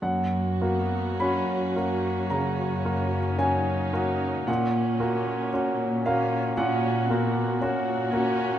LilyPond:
<<
  \new Staff \with { instrumentName = "Grand piano" } { \time 4/4 \key fis \major \tempo 4 = 56 << { fis''4 b''4 ais''4 gis''4 | fis''4. eis''8 fis''2 | } \\ { fis,8 <ais fis'>8 <cis' fis'>8 <ais fis'>8 cis8 <ais fis'>8 <cis' fis'>8 <ais fis'>8 | ais,8 <ais fis'>8 <cis' fis'>8 <ais fis'>8 ais,8 <ais fis'>8 <cis' fis'>8 <ais fis'>8 | } >> }
  \new Staff \with { instrumentName = "Viola section" } { \time 4/4 \key fis \major << { fis'2. dis'4 | cis'2 fis'4 fis'4 | } \\ { ais8 b8 cis'8 cis'2~ cis'8 | ais4 ais8 cis'8 cis'8 b8 ais8 cis'8 | } >> }
  \new Staff \with { instrumentName = "Cello section" } { \clef bass \time 4/4 \key fis \major fis,1 | ais,1 | }
>>